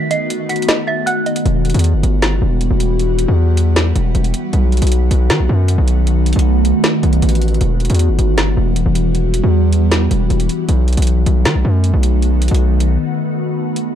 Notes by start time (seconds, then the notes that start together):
Already playing: D#3 A3 B3 F#4
0.11 D#5 C7, closed hi-hat
0.30 closed hi-hat
0.49 F#5 B6, closed hi-hat
0.56 closed hi-hat
0.62 closed hi-hat
0.68 D#5, snare, closed hi-hat
0.87 E5 A6
1.06 F#5 F#6, closed hi-hat
1.26 D#5, closed hi-hat, open hi-hat
1.36 closed hi-hat
1.45 E1 E3 G3 B3 F#4, closed hi-hat
1.65 closed hi-hat
1.70 closed hi-hat
1.74 E2, closed hi-hat
1.79 closed hi-hat
1.84 closed hi-hat
1.94 G1
2.03 G1, closed hi-hat
2.22 snare, closed hi-hat
2.42 E1
2.61 closed hi-hat
2.71 E1
2.80 closed hi-hat
2.99 closed hi-hat
3.19 closed hi-hat
3.28 E2
3.57 closed hi-hat
3.76 snare, closed hi-hat
3.96 E1, closed hi-hat
4.15 E1, closed hi-hat
4.24 closed hi-hat
4.34 closed hi-hat
4.53 B1 D#3 A3, closed hi-hat
4.72 closed hi-hat
4.77 closed hi-hat
4.82 B1, closed hi-hat
4.87 closed hi-hat
4.92 closed hi-hat
5.11 B1, closed hi-hat
5.30 D#3, snare, closed hi-hat
5.40 B1
5.49 F#2
5.68 closed hi-hat
5.78 B1
5.88 closed hi-hat
6.07 closed hi-hat
6.26 closed hi-hat
6.33 B1, closed hi-hat
6.39 closed hi-hat
6.65 closed hi-hat
6.84 snare, closed hi-hat
7.03 B1, closed hi-hat
7.13 closed hi-hat
7.22 A1, closed hi-hat
7.29 closed hi-hat
7.35 closed hi-hat
7.42 closed hi-hat
7.48 closed hi-hat
7.54 closed hi-hat
7.61 E1 E3 G3, closed hi-hat
7.80 closed hi-hat
7.85 closed hi-hat
7.90 E2, closed hi-hat
7.95 closed hi-hat
7.99 closed hi-hat
8.09 G1
8.19 G1, closed hi-hat
8.38 snare, closed hi-hat
8.57 E1
8.76 closed hi-hat
8.86 E1
8.95 closed hi-hat
9.15 closed hi-hat
9.34 closed hi-hat
9.44 E2
9.73 closed hi-hat
9.91 snare, closed hi-hat
10.11 E1, closed hi-hat
10.30 E1, closed hi-hat
10.40 closed hi-hat
10.49 closed hi-hat
10.69 B1 D#3 A3 B3 F#4, closed hi-hat
10.88 closed hi-hat
10.93 closed hi-hat
10.97 B1, closed hi-hat
11.02 closed hi-hat
11.07 closed hi-hat
11.26 B1, closed hi-hat
11.45 D#3, snare, closed hi-hat
11.55 B1
11.65 F#2
11.84 closed hi-hat
11.94 B1
12.03 closed hi-hat
12.22 closed hi-hat
12.42 closed hi-hat
12.48 B1, closed hi-hat
12.55 closed hi-hat
12.80 closed hi-hat
13.76 closed hi-hat